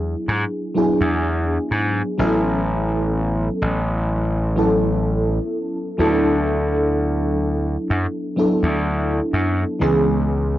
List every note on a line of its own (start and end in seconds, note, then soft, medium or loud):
0.00 0.14 E2 medium
0.00 0.70 F#3 medium
0.00 0.70 B3 medium
0.00 0.71 D4 medium
0.00 0.71 E4 medium
0.00 0.71 G#4 loud
0.28 0.44 G#2 medium
0.75 2.13 F#3 medium
0.75 2.13 B3 medium
0.75 2.14 D4 medium
0.75 2.14 E4 medium
0.75 2.14 G#4 medium
1.01 1.57 E2 loud
1.71 2.01 G#2 medium
2.18 3.48 A1 medium
2.18 4.51 F#3 medium
2.18 4.51 B3 medium
2.18 4.52 C#4 medium
2.18 4.52 E4 medium
2.18 4.52 A4 medium
3.61 5.38 A1 medium
4.55 5.94 F#3 medium
4.55 5.94 B3 medium
4.55 5.94 C#4 medium
4.55 5.95 E4 medium
4.55 5.95 A4 medium
5.98 7.76 D2 loud
5.98 8.32 F#3 medium
5.98 8.32 B3 medium
5.98 8.32 D4 medium
5.98 8.33 E4 medium
5.98 8.33 A4 loud
7.90 8.05 F#2 medium
8.36 9.75 F#3 medium
8.36 9.75 B3 medium
8.36 9.75 D4 medium
8.36 9.76 E4 medium
8.36 9.76 A4 medium
8.63 9.19 D2 loud
9.33 9.63 F#2 medium
9.79 10.58 C#2 loud
9.79 10.58 E3 medium
9.79 10.58 G#3 medium
9.79 10.58 B3 medium
9.79 10.58 C#4 medium
9.79 10.58 G#4 medium